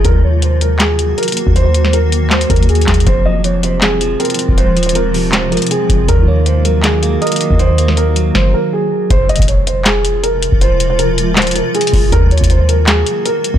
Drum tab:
HH |x-----------------------x-----------x-----------x-----------x-----------x--x--x--x--x-----------|x-----------x-----------x-----------x-----------x-----x-----x---x---x---x---x---x---x---x---x---|x-----------------------x-----------x-----------x-----------x-----------x--x--x--x--x-----------|x-----------x---x---x---x-----------o-----------x-----------x--x--x--x--x-----------x-----------|
CP |------------------------------------------------x-----------------------------------------------|------------------------------------------------x-----------------------------------x-----------|------------------------------------------------x-----------------------------------------------|------------------------------------------------x-----------------------------------------------|
SD |------------------------------------------------o-----------------------------------------------|------------------o-----------------------------o-----------------------------------o-----------|------------------------------------------------o-----------------------------------------------|------------------------------------------------o-----------------------------------------------|
BD |o-----------------------------------------------------------------------------------------o-----|------------------------------------------------------------o-----------------------o-----------|o-----------------------------------------------------------------------------------------o-----|------------------------------------------------------------------------------------o-----------|

HH |x-----------------------x-----------x-----------x-----------x-----------x--x--x--x--x-----------|x-----------x-----------x-----------x-----------------------------------------------------------|x-----------x---x---x---x-----------x-----------x-----------x-----------x-----------x-----------|x-----------x-----------x-----------x-----------x--x--x--x--x-----------x---x---x---o-----------|
CP |------------------------------------------------x-----------------------------------------------|------------------------------------------------------------------------------------------------|------------------------------------------------x-----------------------------------------------|------------------------------------------------x-----------------------------------------------|
SD |------------------------------------------------o-----------------------------------------------|------------------o-----------------------------o-----------------------------------------------|------------------------------------------------o-----------------------------------------------|------------------------------------------------o-----------------------------------------------|
BD |o-----------------------------------------------------------------------------------------o-----|------------------------------------------------o-----------------------------------------------|o-----------------o-----------------------------------------------------------------------o-----|------------------------------------------------------------------------------------o-----------|

HH |x-----------x---x---x---x-----------x-----------x-----------x-----------x-----------x-----------|
CP |------------------------------------------------x-----------------------------------------------|
SD |------------------------------------------------o-----------------------------------------------|
BD |o-----------------o-----------------------------------------------------------------------o-----|